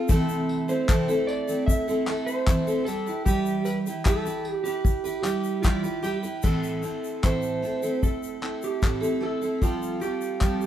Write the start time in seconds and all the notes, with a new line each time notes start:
0.08 C3 E3 A3 C4 E4 A4, kick, shaker
0.29 shaker
0.49 tambourine
0.68 A3 C4 E4 A4 C5, shaker
0.89 C3 E3 A3 C4 E4 A4, kick, clap, shaker
1.08 A3 C4 E4 A4, shaker
1.27 D5, tambourine
1.47 A3 C4 E4 A4, shaker
1.66 E5, kick, shaker
1.88 A3 C4 E4 A4, shaker
2.06 A3 C4 E4 A4, clap, tambourine
2.26 C5, shaker
2.47 C3 E3 A3 C4 E4 A4, kick, clap, shaker
2.67 A3 C4 E4 A4, shaker
2.85 G3 E4 G4 A4 B4, tambourine, shaker
3.06 E4 G4 B4, shaker
3.25 E3 G3 E4 G4 B4, kick, shaker
3.46 shaker
3.65 B4, tambourine, shaker
3.86 E4 G4 B4, shaker
4.05 E3 G3 E4 G4 A4 B4, kick, clap, shaker
4.25 E4 G4 B4, shaker
4.45 tambourine
4.53 G4
4.64 E4 G4 B4, shaker
4.85 kick, shaker
5.04 E4 G4 B4, shaker
5.23 G3 E4 G4 B4, clap, tambourine, shaker
5.44 shaker
5.63 E3 G3 E4 F4 G4 B4, kick, clap, shaker
5.83 E4 G4 B4, shaker
6.03 G3 E4 G4 B4, tambourine, shaker
6.23 E4 G4 B4, shaker
6.42 A2 E3 A3 C4 E4 A4, kick, crash, shaker
6.63 shaker
6.83 A3 C4 E4 A4, shaker
7.04 shaker
7.23 A2 E3 A3 C4 E4 A4 C5, kick, clap, shaker
7.42 shaker
7.62 A3 C4 E4 A4, shaker
7.82 A3 C4 E4 A4, shaker
8.03 A4, kick, shaker
8.23 shaker
8.42 A3 C4 E4 A4, clap
8.62 G4, shaker
8.82 A2 E3 A3 C4 E4 A4, kick, clap, shaker
9.01 A3 C4 E4 A4, shaker
9.21 A3 C4 E4 A4
9.41 A3 C4 E4 A4, shaker
9.62 F3 G3 C4 F4 A4, kick, shaker
9.82 shaker
10.00 G3 C4 F4 G4 A4, shaker
10.21 shaker
10.40 F3 G3 C4 F4 A4, kick, clap, shaker
10.61 shaker